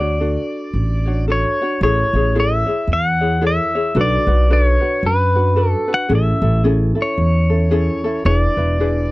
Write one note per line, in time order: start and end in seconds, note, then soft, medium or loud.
0.00 0.35 D2 medium
0.00 0.20 D4 soft
0.00 0.21 F#4 soft
0.00 0.20 C#5 soft
0.00 1.25 D5 medium
0.20 1.06 D4 medium
0.20 1.06 F#4 medium
0.20 1.28 A4 medium
0.73 1.43 A1 medium
1.06 1.27 D4 soft
1.06 1.28 F#4 soft
1.06 1.27 C#5 medium
1.28 1.60 D4 medium
1.28 1.60 F#4 medium
1.28 1.60 A4 medium
1.28 1.60 C#5 medium
1.32 1.82 C#5 medium
1.62 1.83 D4 soft
1.62 1.82 F#4 medium
1.62 1.82 C#5 medium
1.81 2.02 A1 medium
1.81 2.14 E4 medium
1.81 2.14 G#4 medium
1.81 2.14 A4 medium
1.81 2.37 C#5 medium
1.81 2.14 C#5 medium
2.13 2.62 A1 medium
2.13 2.35 G#4 medium
2.13 2.35 C#5 medium
2.17 2.34 E4 soft
2.35 2.67 E4 medium
2.35 2.66 G#4 medium
2.35 2.66 A4 medium
2.35 2.65 C#5 medium
2.40 2.92 E5 medium
2.66 3.22 E4 soft
2.66 3.20 G#4 soft
2.66 3.20 C#5 soft
2.87 3.58 E2 medium
2.93 3.46 F#5 loud
3.21 3.40 E4 soft
3.21 3.41 G#4 soft
3.21 3.41 C#5 soft
3.41 3.74 E4 medium
3.41 3.74 G#4 medium
3.41 3.74 A4 medium
3.41 3.74 C#5 medium
3.47 4.00 E5 loud
3.75 3.96 E4 soft
3.75 3.96 G#4 soft
3.75 3.96 C#5 medium
3.95 4.16 B1 loud
3.95 4.28 D4 medium
3.95 4.27 F#4 medium
3.95 4.28 A4 medium
3.95 4.26 B4 medium
4.01 4.53 D5 medium
4.27 4.76 B1 medium
4.27 4.49 D4 soft
4.27 4.49 F#4 medium
4.27 4.49 B4 soft
4.50 4.81 D4 medium
4.50 4.80 F#4 medium
4.50 4.82 A4 medium
4.50 4.79 B4 medium
4.50 5.06 C#5 medium
4.81 5.36 D4 soft
4.81 5.35 F#4 soft
4.81 5.34 B4 soft
5.03 5.73 F#2 medium
5.03 5.69 B4 medium
5.35 5.56 D4 soft
5.35 5.55 F#4 soft
5.35 5.56 B4 soft
5.56 5.89 D4 medium
5.56 5.88 F#4 medium
5.56 5.89 A4 medium
5.56 5.87 B4 medium
5.69 5.93 A4 medium
5.88 6.09 D4 soft
5.88 6.09 F#4 medium
5.88 6.10 B4 medium
5.94 6.13 F#5 loud
6.09 6.31 A1 loud
6.09 6.42 C#4 medium
6.09 6.42 E4 medium
6.09 6.42 G#4 medium
6.09 6.41 A4 medium
6.15 6.63 E5 medium
6.42 6.91 A1 medium
6.42 6.63 C#4 soft
6.42 6.63 E4 soft
6.42 6.64 A4 medium
6.64 6.96 C#4 medium
6.64 6.95 E4 medium
6.64 6.96 G#4 medium
6.64 6.94 A4 medium
6.95 7.51 C#4 soft
6.95 7.51 E4 soft
6.95 7.49 A4 medium
7.02 8.26 C#5 medium
7.18 7.88 E2 medium
7.50 7.70 C#4 soft
7.50 7.71 E4 soft
7.50 7.71 A4 medium
7.71 8.04 C#4 medium
7.71 8.04 E4 medium
7.71 8.04 G#4 medium
7.71 8.03 A4 medium
8.04 8.25 C#4 soft
8.04 8.24 E4 medium
8.04 8.25 A4 medium
8.25 8.46 E1 medium
8.25 8.58 D4 medium
8.25 8.57 E4 medium
8.25 8.57 G#4 medium
8.25 8.56 B4 medium
8.25 8.37 C#5 medium
8.37 9.12 D5 medium
8.57 9.06 E1 medium
8.57 8.80 D4 soft
8.57 8.79 E4 medium
8.57 8.79 B4 medium
8.80 9.12 D4 medium
8.80 9.12 E4 medium
8.80 9.12 G#4 medium
8.80 9.12 B4 medium